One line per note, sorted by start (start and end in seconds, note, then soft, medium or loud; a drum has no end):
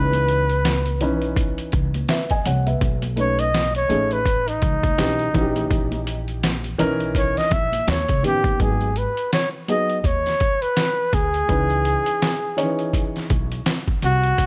0.00 1.02 C#2 loud
0.00 0.45 E3 medium
0.00 0.45 C#4 medium
0.00 0.46 D#4 medium
0.00 0.46 B4 medium
0.00 1.38 B4 loud
0.13 closed hi-hat soft
0.13 high conga medium
0.13 shaker soft
0.27 closed hi-hat medium
0.27 shaker soft
0.49 closed hi-hat medium
0.49 shaker soft
0.65 snare loud
0.65 closed hi-hat medium
0.65 high conga soft
0.65 shaker medium
0.85 closed hi-hat medium
0.85 shaker soft
1.01 1.58 B1 medium
1.01 2.03 E3 medium
1.01 2.03 C#4 medium
1.01 2.04 D#4 medium
1.01 2.04 B4 medium
1.01 closed hi-hat medium
1.01 low conga medium
1.01 shaker soft
1.22 closed hi-hat soft
1.22 shaker soft
1.36 kick medium
1.36 closed hi-hat medium
1.36 shaker medium
1.58 closed hi-hat soft
1.58 shaker soft
1.72 2.02 C#2 medium
1.72 kick loud
1.72 closed hi-hat medium
1.72 low conga medium
1.72 shaker medium
1.94 closed hi-hat medium
1.94 high conga medium
1.94 shaker soft
2.09 2.30 B4 medium
2.09 2.29 E5 medium
2.09 snare loud
2.09 closed hi-hat medium
2.09 shaker medium
2.30 2.45 D#5 medium
2.30 2.45 G#5 medium
2.30 kick medium
2.30 closed hi-hat soft
2.30 shaker soft
2.46 2.74 C2 loud
2.46 2.66 C#5 medium
2.46 2.66 F#5 medium
2.46 closed hi-hat medium
2.46 high conga soft
2.46 low conga medium
2.46 shaker soft
2.67 3.01 B4 medium
2.67 3.01 E5 medium
2.67 closed hi-hat soft
2.67 high conga medium
2.67 shaker soft
2.81 3.86 B1 loud
2.81 kick loud
2.81 closed hi-hat medium
2.81 shaker medium
3.02 closed hi-hat medium
3.02 high conga medium
3.02 shaker soft
3.16 3.44 A3 medium
3.16 3.44 C#4 medium
3.16 3.44 D#4 medium
3.16 3.45 B4 medium
3.16 3.41 C#5 loud
3.16 closed hi-hat medium
3.16 shaker soft
3.39 3.75 D#5 loud
3.39 closed hi-hat medium
3.39 shaker soft
3.54 snare loud
3.54 closed hi-hat medium
3.54 high conga medium
3.54 shaker medium
3.74 4.14 C#5 loud
3.74 closed hi-hat medium
3.74 shaker soft
3.89 4.63 A1 medium
3.89 4.17 A3 medium
3.89 4.17 C#4 medium
3.89 4.17 D#4 medium
3.89 4.17 G#4 medium
3.89 closed hi-hat medium
3.89 low conga medium
3.89 shaker soft
4.11 4.50 B4 medium
4.11 closed hi-hat soft
4.11 shaker soft
4.26 kick medium
4.26 closed hi-hat medium
4.26 shaker medium
4.48 6.28 D#4 loud
4.48 closed hi-hat soft
4.48 shaker soft
4.62 4.91 C#2 medium
4.62 kick loud
4.62 closed hi-hat medium
4.62 low conga medium
4.62 shaker medium
4.83 kick loud
4.83 closed hi-hat medium
4.83 high conga medium
4.83 shaker soft
4.98 5.27 B1 medium
4.98 5.25 E3 medium
4.98 5.25 C#4 medium
4.98 5.25 D#4 medium
4.98 5.26 G4 medium
4.98 snare loud
4.98 closed hi-hat medium
4.98 shaker medium
5.19 closed hi-hat soft
5.19 shaker soft
5.33 5.63 A#1 loud
5.33 6.60 E3 medium
5.33 6.61 C#4 medium
5.33 6.61 D#4 medium
5.33 5.42 F#4 medium
5.33 kick loud
5.33 closed hi-hat medium
5.33 high conga soft
5.33 low conga medium
5.33 shaker soft
5.41 6.64 G4 medium
5.56 closed hi-hat soft
5.56 high conga medium
5.56 shaker soft
5.71 6.75 A#1 medium
5.71 kick loud
5.71 closed hi-hat medium
5.71 shaker medium
5.92 closed hi-hat medium
5.92 high conga medium
5.92 shaker soft
6.06 closed hi-hat medium
6.06 shaker soft
6.28 closed hi-hat soft
6.28 shaker soft
6.43 snare loud
6.43 closed hi-hat medium
6.43 high conga soft
6.43 shaker medium
6.64 closed hi-hat medium
6.64 shaker soft
6.78 7.36 B1 medium
6.78 7.81 E3 loud
6.78 7.81 C#4 medium
6.78 7.81 D#4 medium
6.78 7.82 A#4 loud
6.78 closed hi-hat medium
6.78 low conga medium
6.78 shaker soft
6.99 closed hi-hat soft
6.99 shaker soft
7.15 7.39 C#5 medium
7.15 kick medium
7.15 closed hi-hat loud
7.15 shaker medium
7.35 7.54 D#5 loud
7.35 snare soft
7.35 closed hi-hat soft
7.35 shaker soft
7.51 7.80 A#1 medium
7.51 7.91 E5 loud
7.51 kick loud
7.51 closed hi-hat medium
7.51 low conga medium
7.51 shaker soft
7.72 closed hi-hat medium
7.72 high conga medium
7.72 shaker soft
7.87 8.04 D#2 loud
7.87 8.25 C#5 medium
7.87 snare loud
7.87 closed hi-hat medium
7.87 shaker medium
8.08 8.24 C#2 medium
8.08 kick medium
8.08 closed hi-hat soft
8.08 shaker soft
8.23 8.52 A1 medium
8.23 8.59 D#3 medium
8.23 8.58 B3 medium
8.23 8.60 C#4 medium
8.23 8.60 G4 medium
8.23 8.59 G4 loud
8.23 closed hi-hat medium
8.23 high conga soft
8.23 low conga soft
8.23 shaker soft
8.44 kick loud
8.44 closed hi-hat medium
8.44 high conga medium
8.44 shaker soft
8.60 9.05 G#1 medium
8.60 8.87 F#3 medium
8.60 8.87 B3 medium
8.60 8.87 D#4 medium
8.60 8.87 G#4 medium
8.60 8.99 G#4 medium
8.60 kick loud
8.60 closed hi-hat medium
8.81 closed hi-hat soft
8.96 9.33 B4 medium
8.96 closed hi-hat medium
9.17 closed hi-hat soft
9.33 9.49 C#5 medium
9.33 snare loud
9.33 closed hi-hat medium
9.68 9.95 F#3 medium
9.68 9.95 B3 medium
9.68 9.96 D#4 medium
9.68 9.96 G#4 medium
9.68 10.01 D#5 loud
9.68 closed hi-hat medium
9.90 closed hi-hat soft
10.01 10.33 D#2 medium
10.01 10.07 D#5 medium
10.01 kick medium
10.05 10.63 C#5 loud
10.05 closed hi-hat medium
10.26 snare soft
10.26 closed hi-hat soft
10.40 kick medium
10.40 closed hi-hat medium
10.62 11.16 B4 loud
10.62 closed hi-hat medium
10.77 snare loud
10.77 closed hi-hat medium
11.13 11.41 D2 medium
11.13 13.30 G#4 loud
11.13 kick medium
11.13 closed hi-hat medium
11.34 closed hi-hat soft
11.48 11.94 C#2 loud
11.48 12.51 E3 medium
11.48 12.51 C#4 medium
11.48 12.51 D#4 medium
11.48 12.52 B4 medium
11.48 kick loud
11.48 closed hi-hat medium
11.70 closed hi-hat soft
11.85 closed hi-hat medium
12.06 closed hi-hat medium
12.22 snare loud
12.22 closed hi-hat medium
12.57 12.65 D#3 medium
12.57 13.60 C#4 medium
12.57 13.60 D#4 medium
12.57 13.60 C#5 medium
12.57 closed hi-hat medium
12.63 13.63 E3 medium
12.79 closed hi-hat soft
12.93 kick medium
12.93 closed hi-hat medium
13.16 snare soft
13.16 closed hi-hat soft
13.30 13.58 B1 medium
13.30 kick medium
13.30 closed hi-hat medium
13.52 closed hi-hat medium
13.66 snare loud
13.66 closed hi-hat medium
13.88 kick medium
14.02 14.31 C2 medium
14.02 14.46 F#4 loud
14.02 closed hi-hat medium
14.24 closed hi-hat soft
14.38 14.46 B1 medium
14.38 kick loud
14.38 closed hi-hat medium